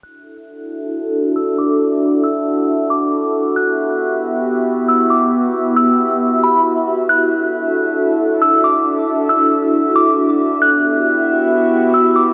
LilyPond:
<<
  \new Staff \with { instrumentName = "Synth bell" } { \time 4/4 \key d \mixolydian \tempo 4 = 136 fis'''2. e'''8 d'''8 | r4 e'''4. d'''4. | fis'''2. e'''8 d'''8 | r4 e'''4. b''8 r4 |
fis'''2. e'''8 d'''8 | r4 e'''4. d'''4. | fis'''2. e'''8 d'''8 | }
  \new Staff \with { instrumentName = "Ambient pad" } { \time 4/4 \key d \mixolydian << { <e' fis' e''>1~ | <e' fis' e''>1~ | <e' fis' e''>1~ | <e' fis' e''>1~ |
<e' fis' e''>1~ | <e' fis' e''>1 | <e' fis' e''>1 | } \\ { <d' a'>1~ | <d' a'>1 | <b g'>1~ | <b g'>1 |
<d' a'>1~ | <d' a'>1 | <b g'>1 | } >> }
>>